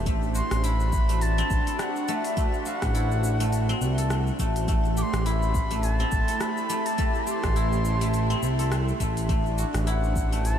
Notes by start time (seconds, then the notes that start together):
Already playing: C4 E4 G4 A4 C5
0.06 A1 A3 D4, kick, open hi-hat, shaker
0.23 F#4, shaker
0.35 F#4 C6, shaker
0.51 A1, cross-stick, open hi-hat, shaker
0.64 E4 B5, open hi-hat, shaker
0.80 shaker
0.93 kick, shaker
1.09 A3, open hi-hat, shaker
1.21 A5, open hi-hat, shaker
1.38 C4, shaker
1.51 A1, kick, shaker
1.67 A4, open hi-hat, shaker
1.79 F#5 G5, cross-stick, open hi-hat, shaker
1.96 shaker
2.08 A3, shaker
2.25 E5, open hi-hat, shaker
2.37 A3, kick, open hi-hat, shaker
2.54 shaker
2.66 F#4 F5, shaker
2.79 A1 F#5, kick, cross-stick, open hi-hat, shaker
2.95 E4, open hi-hat, shaker
3.11 shaker
3.24 shaker
3.40 A3, open hi-hat, shaker
3.53 open hi-hat, shaker
3.69 C4, shaker
3.81 C2, shaker
3.98 A4, open hi-hat, shaker
4.10 cross-stick, open hi-hat, shaker
4.27 shaker
4.39 A1 A3, kick, shaker
4.56 open hi-hat, shaker
4.68 A3, kick, open hi-hat, shaker
4.85 shaker
4.97 G4 D6, shaker
5.02 C6
5.13 A1, cross-stick, open hi-hat, shaker
5.24 E4 B5, open hi-hat, shaker
5.42 shaker
5.55 kick, shaker
5.71 A3, open hi-hat, shaker
5.83 A5, open hi-hat, shaker
5.98 C4 G4, shaker
6.12 A1, kick, shaker
6.28 A4, open hi-hat, shaker
6.41 B5, cross-stick, open hi-hat, shaker
6.57 shaker
6.70 A3, shaker
6.86 A5, open hi-hat, shaker
6.98 A3, kick, open hi-hat, shaker
7.15 shaker
7.27 G4 C6, shaker
7.44 A1, kick, cross-stick, open hi-hat, shaker
7.56 E4, open hi-hat, shaker
7.73 shaker
7.85 shaker
8.01 A3, open hi-hat, shaker
8.14 open hi-hat, shaker
8.30 C4, shaker
8.43 C2, shaker
8.59 A4, open hi-hat, shaker
8.72 cross-stick, open hi-hat, shaker
8.88 shaker
9.00 A1 A3, kick, shaker
9.17 open hi-hat, shaker
9.29 A3 D4, kick, open hi-hat, shaker
9.46 shaker
9.58 F#4, shaker
9.74 A1, cross-stick, open hi-hat, shaker
9.87 E4 C5 F#5, open hi-hat, shaker
10.04 shaker
10.16 kick, shaker
10.32 A3, open hi-hat, shaker
10.45 A5, open hi-hat, shaker